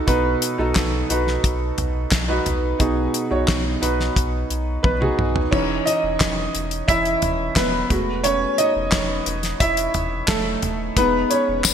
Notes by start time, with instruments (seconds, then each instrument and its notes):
Already playing: upright piano D#4 F#4 A4 B4
0.07 sub bass B1, upright piano B2 D#4 F#4 B4, kick, closed hi-hat
0.42 closed hi-hat
0.58 sub bass B1, upright piano D#4 F#4 A4
0.75 sub bass B1, kick, snare, clap, closed hi-hat
1.09 sub bass B1, upright piano D#4 F#4 B4, closed hi-hat
1.27 snare
1.44 sub bass B1, kick, closed hi-hat
1.78 sub bass B1, closed hi-hat, floor tom
2.12 sub bass B1, kick, snare, clap, closed hi-hat
2.28 upright piano D#4 F#4 B4
2.46 sub bass B1, closed hi-hat, floor tom
2.79 sub bass B1, upright piano B2 D#4 F#4 G#4, kick, closed hi-hat
3.14 closed hi-hat
3.31 sub bass B1, upright piano D#4 F#4 C#5
3.48 sub bass B1, kick, snare, clap, closed hi-hat
3.81 sub bass B1, upright piano D#4 F#4 B4, closed hi-hat
4.00 snare
4.16 sub bass B1, kick, closed hi-hat
4.50 sub bass B1, closed hi-hat
4.83 sub bass B1, upright piano B3 B4, kick, high tom
5.00 upright piano D#4 F#4 G#4, mid tom
5.18 sub bass B1, mid tom
5.36 floor tom
5.51 sub bass E1, upright piano E3 C#4 D#4 C#5, kick, crash
5.86 upright piano D#4 D#5, closed hi-hat
6.03 sub bass E1
6.20 sub bass E1, kick, snare, clap, closed hi-hat
6.55 sub bass E1, closed hi-hat
6.71 closed hi-hat
6.88 sub bass E1, upright piano E3 C#4 E4 D#5 E5, kick, closed hi-hat
7.05 closed hi-hat
7.22 sub bass E1, closed hi-hat, floor tom
7.56 sub bass E1, upright piano B3 B4, kick, snare, clap, closed hi-hat
7.89 sub bass E1, upright piano G#3 A3 F#4, kick, closed hi-hat, floor tom
8.24 upright piano C#4 C#5, closed hi-hat
8.58 upright piano D#4 D#5, closed hi-hat
8.76 sub bass E1
8.92 sub bass E1, kick, snare, clap, closed hi-hat
9.26 sub bass E1, closed hi-hat
9.43 snare, closed hi-hat
9.60 sub bass E1, upright piano E4 E5, kick, closed hi-hat
9.77 closed hi-hat
9.94 sub bass E1, closed hi-hat, floor tom
10.28 sub bass E1, upright piano A3 A4, kick, snare, clap, closed hi-hat
10.62 sub bass D#1, closed hi-hat, floor tom
10.97 sub bass E1, upright piano G#3 B3 D#4 B4, kick, closed hi-hat
11.30 upright piano C#4 C#5, closed hi-hat
11.48 sub bass E1
11.64 sub bass E1, kick, snare, clap, closed hi-hat, tambourine